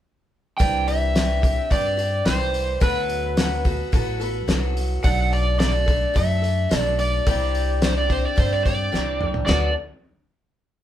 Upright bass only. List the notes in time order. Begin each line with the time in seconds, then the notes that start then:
0.60 C2
1.71 G2
2.26 C2
2.82 D2
3.93 A1
4.47 C2
5.05 B1
6.16 F#2
6.71 B1
7.27 C2
8.38 G2
8.93 C2
9.48 D2